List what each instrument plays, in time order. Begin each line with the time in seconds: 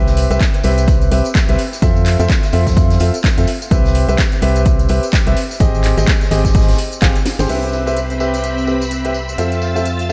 Already playing: fm bass C2, grand piano C4 G4 B4 E5
0.06 snare, tambourine
0.17 closed hi-hat, open hi-hat, tambourine
0.31 fm bass C2, grand piano C4 G4 B4 E5, closed hi-hat, tambourine
0.40 kick, snare, clap, closed hi-hat, tambourine
0.53 closed hi-hat, tambourine
0.55 tambourine
0.64 fm bass C2, grand piano C4 G4 B4 E5, closed hi-hat, open hi-hat, tambourine
0.78 closed hi-hat, tambourine
0.88 kick, closed hi-hat, tambourine
1.02 closed hi-hat, tambourine
1.11 fm bass C2, grand piano C4 G4 B4 E5, closed hi-hat, open hi-hat, tambourine
1.24 closed hi-hat, tambourine
1.26 tambourine
1.34 kick, snare, clap, closed hi-hat, tambourine
1.48 fm bass C2, grand piano C4 G4 B4 E5, closed hi-hat, tambourine
1.58 closed hi-hat, open hi-hat, tambourine
1.72 snare, tambourine
1.82 fm bass F2, grand piano C4 F4 A4 E5, kick, closed hi-hat, tambourine
1.96 tambourine
2.06 clap, closed hi-hat, open hi-hat, tambourine
2.19 fm bass F2, grand piano C4 F4 A4 E5, closed hi-hat, tambourine
2.29 kick, snare, clap, closed hi-hat, tambourine
2.43 snare, closed hi-hat, tambourine
2.53 fm bass F2, grand piano C4 F4 A4 E5, closed hi-hat, open hi-hat, tambourine
2.66 kick, snare, closed hi-hat, tambourine
2.76 kick, closed hi-hat, tambourine
2.90 snare, closed hi-hat, tambourine
3.00 fm bass F2, grand piano C4 F4 A4 E5, snare, closed hi-hat, open hi-hat, tambourine
3.14 closed hi-hat, tambourine
3.24 kick, snare, clap, closed hi-hat, tambourine
3.37 fm bass F2, grand piano C4 F4 A4 E5, closed hi-hat, tambourine
3.38 tambourine
3.47 closed hi-hat, open hi-hat, tambourine
3.62 tambourine
3.71 fm bass C2, grand piano C4 G4 B4 E5, kick, closed hi-hat, tambourine
3.85 snare, tambourine
3.95 closed hi-hat, open hi-hat, tambourine
4.09 fm bass C2, grand piano C4 G4 B4 E5, closed hi-hat, tambourine
4.18 kick, snare, clap, closed hi-hat, tambourine
4.32 closed hi-hat, tambourine
4.42 fm bass C2, grand piano C4 G4 B4 E5, closed hi-hat, open hi-hat, tambourine
4.55 closed hi-hat, tambourine
4.65 kick, closed hi-hat, tambourine
4.79 closed hi-hat, tambourine
4.89 fm bass C2, grand piano C4 G4 B4 E5, closed hi-hat, open hi-hat, tambourine
5.03 closed hi-hat, tambourine
5.13 kick, snare, clap, closed hi-hat, tambourine
5.26 fm bass C2, grand piano C4 G4 B4 E5, closed hi-hat, tambourine
5.36 closed hi-hat, open hi-hat, tambourine
5.49 snare, tambourine
5.51 tambourine
5.60 fm bass G#1, grand piano C4 G4 G#4 D#5, kick, closed hi-hat, tambourine
5.74 tambourine
5.83 clap, closed hi-hat, open hi-hat, tambourine
5.97 fm bass G#1, grand piano C4 G4 G#4 D#5, closed hi-hat, tambourine
6.07 kick, snare, clap, closed hi-hat, tambourine
6.21 snare, closed hi-hat, tambourine
6.31 fm bass G#1, grand piano C4 G4 G#4 D#5, closed hi-hat, open hi-hat, tambourine
6.45 kick, snare, closed hi-hat, tambourine
6.54 kick, snare, closed hi-hat, tambourine
6.55 tambourine
6.61 snare, closed hi-hat
6.68 snare, closed hi-hat, open hi-hat, tambourine
6.73 snare, closed hi-hat
6.78 snare, closed hi-hat, open hi-hat, tambourine
6.92 closed hi-hat, tambourine
7.01 fm bass G#1, grand piano C4 G4 G#4 F5, kick, snare, clap, closed hi-hat, tambourine
7.16 closed hi-hat, tambourine
7.26 snare, closed hi-hat, open hi-hat, tambourine
7.39 fm bass G#1, grand piano C4 G4 G#4 C5, snare, closed hi-hat, tambourine
7.49 fm bass C2, string machine C4 B5 E6, grand piano C4 G4 B4 E5, closed hi-hat, tambourine, crash
7.63 closed hi-hat, tambourine
7.73 tambourine
7.87 grand piano C4 G4 B4 E5, tambourine
7.97 closed hi-hat, tambourine
8.10 closed hi-hat, tambourine
8.20 grand piano C4 G4 B4 E5, tambourine
8.34 closed hi-hat, tambourine
8.44 closed hi-hat, tambourine
8.57 tambourine
8.67 grand piano C4 G4 B4 E5, tambourine
8.81 tambourine
8.91 closed hi-hat, tambourine
9.05 grand piano C4 G4 B4 E5, closed hi-hat, tambourine
9.14 tambourine
9.28 tambourine
9.38 fm bass F2, grand piano C4 F4 A4 E5, string machine F4 A6, closed hi-hat, tambourine
9.52 closed hi-hat, tambourine
9.62 tambourine
9.75 grand piano C4 F4 A4 E5, tambourine
9.85 closed hi-hat, tambourine
9.99 closed hi-hat, tambourine
10.09 grand piano C4 F4 A4 E5